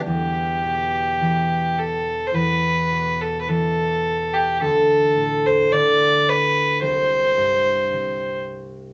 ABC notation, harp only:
X:1
M:4/4
L:1/8
Q:1/4=54
K:Em
V:1 name="Harp" clef=bass
E,, B,, E,2 E,, B,, E,2 | D,, A,, D,2 C,, G,, C,2 |]